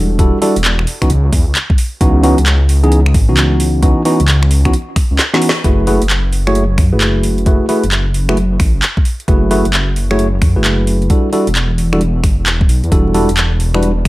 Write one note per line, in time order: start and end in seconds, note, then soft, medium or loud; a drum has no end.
0.00 0.31 E1 medium
0.00 0.17 G3 medium
0.00 0.17 D4 medium
0.00 0.17 E4 medium
0.00 0.17 F#4 medium
0.00 0.17 A4 medium
0.19 0.38 G3 medium
0.19 0.38 D4 medium
0.19 0.38 E4 medium
0.19 0.38 F#4 medium
0.19 0.38 A4 loud
0.19 kick loud
0.19 closed hi-hat medium
0.42 0.55 G3 loud
0.42 0.55 D4 medium
0.42 0.55 E4 medium
0.42 0.55 F#4 medium
0.42 0.55 A4 loud
0.42 open hi-hat loud
0.56 0.86 E1 medium
0.56 closed hi-hat medium
0.64 clap loud
0.64 closed hi-hat medium
0.79 finger snap medium
0.87 open hi-hat loud
1.02 1.09 E3 medium
1.02 1.09 B3 medium
1.02 1.09 C#4 medium
1.02 1.09 D#4 medium
1.02 1.09 F#4 loud
1.02 finger snap medium
1.02 kick medium
1.02 closed hi-hat soft
1.10 1.31 C#2 loud
1.10 closed hi-hat medium
1.33 1.45 E2 medium
1.33 kick loud
1.33 open hi-hat loud
1.47 1.54 C#2 medium
1.55 clap loud
1.55 closed hi-hat medium
1.70 kick loud
1.78 open hi-hat loud
2.01 2.35 C#2 loud
2.01 2.22 E3 loud
2.01 2.22 B3 medium
2.01 2.22 C#4 medium
2.01 2.22 D#4 medium
2.01 2.22 F#4 loud
2.01 kick loud
2.01 closed hi-hat medium
2.23 2.37 E3 medium
2.23 2.37 B3 medium
2.23 2.37 C#4 medium
2.23 2.37 D#4 medium
2.23 2.37 F#4 loud
2.23 open hi-hat loud
2.38 3.16 C#2 medium
2.38 closed hi-hat medium
2.46 clap loud
2.46 closed hi-hat medium
2.69 open hi-hat loud
2.84 2.99 E3 loud
2.84 2.99 B3 medium
2.84 2.99 C#4 medium
2.84 2.99 D#4 medium
2.84 2.99 G#4 loud
2.84 closed hi-hat soft
2.92 closed hi-hat medium
3.06 finger snap medium
3.14 3.30 G#1 medium
3.14 kick loud
3.14 open hi-hat loud
3.29 3.94 C#2 medium
3.29 3.81 E3 medium
3.29 3.81 B3 medium
3.29 3.81 C#4 medium
3.29 3.81 D#4 medium
3.29 3.81 F#4 medium
3.37 clap loud
3.37 closed hi-hat medium
3.60 open hi-hat loud
3.83 4.01 E3 medium
3.83 4.01 B3 medium
3.83 4.01 C#4 medium
3.83 4.01 D#4 medium
3.83 4.01 F#4 loud
3.83 kick loud
3.83 closed hi-hat medium
4.05 4.19 E3 loud
4.05 4.19 B3 medium
4.05 4.19 C#4 medium
4.05 4.19 D#4 medium
4.05 4.19 F#4 loud
4.05 open hi-hat loud
4.20 4.72 C#2 medium
4.20 closed hi-hat medium
4.28 clap loud
4.28 closed hi-hat medium
4.43 finger snap medium
4.51 open hi-hat loud
4.65 4.73 E3 loud
4.65 4.73 B3 medium
4.65 4.73 C#4 medium
4.65 4.73 D#4 medium
4.65 4.73 F#4 loud
4.65 finger snap medium
4.65 kick medium
4.65 closed hi-hat soft
4.73 closed hi-hat medium
4.96 finger snap medium
4.96 kick loud
4.96 open hi-hat loud
5.11 5.18 C#2 medium
5.19 snare medium
5.19 clap loud
5.19 closed hi-hat medium
5.34 5.49 E3 loud
5.34 5.49 B3 medium
5.34 5.49 C#4 medium
5.34 5.49 D#4 medium
5.34 5.49 F#4 loud
5.34 snare medium
5.42 open hi-hat loud
5.49 snare loud
5.64 5.99 F#1 loud
5.64 5.85 A3 medium
5.64 5.85 E4 medium
5.64 5.85 F#4 medium
5.64 5.85 G#4 medium
5.64 5.85 B4 loud
5.64 kick loud
5.64 closed hi-hat medium
5.87 6.01 A3 medium
5.87 6.01 E4 medium
5.87 6.01 F#4 medium
5.87 6.01 G#4 medium
5.87 6.01 B4 loud
5.87 open hi-hat loud
6.02 6.79 F#1 medium
6.02 closed hi-hat medium
6.10 clap loud
6.10 closed hi-hat medium
6.33 open hi-hat medium
6.47 6.63 A3 medium
6.47 6.63 E4 medium
6.47 6.63 F#4 medium
6.47 6.63 G#4 medium
6.47 6.63 C#5 loud
6.47 finger snap medium
6.55 closed hi-hat medium
6.78 6.94 F#2 medium
6.78 finger snap medium
6.78 kick loud
6.78 open hi-hat loud
6.92 7.58 F#1 medium
6.92 7.44 A3 medium
6.92 7.44 E4 medium
6.92 7.44 F#4 medium
6.92 7.44 G#4 medium
6.92 7.44 B4 medium
7.01 clap loud
7.01 closed hi-hat medium
7.23 open hi-hat loud
7.38 closed hi-hat soft
7.46 7.65 A3 medium
7.46 7.65 E4 medium
7.46 7.65 F#4 medium
7.46 7.65 G#4 medium
7.46 7.65 B4 medium
7.46 kick loud
7.46 closed hi-hat medium
7.69 7.83 A3 medium
7.69 7.83 E4 medium
7.69 7.83 F#4 medium
7.69 7.83 G#4 medium
7.69 7.83 B4 loud
7.69 open hi-hat loud
7.83 8.36 F#1 medium
7.83 closed hi-hat medium
7.92 clap loud
7.92 closed hi-hat medium
8.14 open hi-hat medium
8.29 8.37 A3 medium
8.29 8.37 E4 medium
8.29 8.37 F#4 medium
8.29 8.37 G#4 medium
8.29 8.37 B4 loud
8.29 finger snap medium
8.37 8.58 F#1 loud
8.37 closed hi-hat medium
8.60 8.73 A1 medium
8.60 finger snap medium
8.60 kick loud
8.60 open hi-hat loud
8.74 8.82 F#1 medium
8.82 clap loud
8.82 closed hi-hat medium
8.97 kick loud
9.05 open hi-hat medium
9.20 closed hi-hat soft
9.28 9.63 F#1 loud
9.28 9.49 A3 medium
9.28 9.49 E4 medium
9.28 9.49 F#4 medium
9.28 9.49 G#4 medium
9.28 9.49 B4 loud
9.28 kick loud
9.28 closed hi-hat medium
9.51 9.65 A3 medium
9.51 9.65 E4 medium
9.51 9.65 F#4 medium
9.51 9.65 G#4 medium
9.51 9.65 B4 loud
9.51 open hi-hat loud
9.65 10.43 F#1 medium
9.65 closed hi-hat medium
9.73 clap loud
9.73 closed hi-hat medium
9.96 open hi-hat medium
10.11 10.26 A3 medium
10.11 10.26 E4 medium
10.11 10.26 F#4 medium
10.11 10.26 G#4 medium
10.11 10.26 C#5 loud
10.11 finger snap medium
10.19 closed hi-hat medium
10.42 10.58 F#2 medium
10.42 finger snap medium
10.42 kick loud
10.42 open hi-hat loud
10.56 11.08 F#1 medium
10.56 11.08 A3 medium
10.56 11.08 E4 medium
10.56 11.08 F#4 medium
10.56 11.08 G#4 medium
10.56 11.08 B4 medium
10.64 clap loud
10.64 closed hi-hat medium
10.87 open hi-hat medium
11.02 closed hi-hat soft
11.10 11.29 G3 medium
11.10 11.29 D4 medium
11.10 11.29 E4 medium
11.10 11.29 F#4 medium
11.10 11.29 A4 medium
11.10 kick loud
11.10 closed hi-hat medium
11.33 11.46 G3 medium
11.33 11.46 D4 medium
11.33 11.46 E4 medium
11.33 11.46 F#4 medium
11.33 11.46 A4 loud
11.33 open hi-hat medium
11.47 11.99 E1 medium
11.47 closed hi-hat medium
11.55 clap loud
11.55 closed hi-hat medium
11.78 open hi-hat medium
11.93 12.00 G3 medium
11.93 12.00 D4 medium
11.93 12.00 E4 medium
11.93 12.00 F#4 medium
11.93 12.00 A4 loud
11.93 finger snap medium
12.01 12.22 E1 loud
12.01 closed hi-hat medium
12.24 12.36 G1 medium
12.24 finger snap medium
12.24 kick loud
12.24 open hi-hat loud
12.38 12.62 E1 medium
12.46 clap loud
12.46 closed hi-hat medium
12.61 12.68 D1 medium
12.61 kick loud
12.69 12.82 B1 medium
12.69 open hi-hat medium
12.84 12.91 E2 loud
12.84 closed hi-hat soft
12.92 13.26 E1 loud
12.92 13.12 G3 medium
12.92 13.13 D4 medium
12.92 13.13 E4 medium
12.92 13.12 F#4 medium
12.92 13.13 A4 loud
12.92 kick loud
12.92 closed hi-hat medium
13.14 13.28 G3 medium
13.14 13.28 D4 medium
13.14 13.28 E4 medium
13.14 13.28 F#4 medium
13.14 13.28 A4 loud
13.14 open hi-hat loud
13.29 14.07 E1 medium
13.29 closed hi-hat medium
13.37 clap loud
13.37 closed hi-hat medium
13.60 open hi-hat medium
13.74 13.90 G3 medium
13.74 13.90 D4 medium
13.74 13.90 E4 medium
13.74 13.90 F#4 medium
13.74 13.90 B4 loud
13.74 finger snap medium
13.83 closed hi-hat medium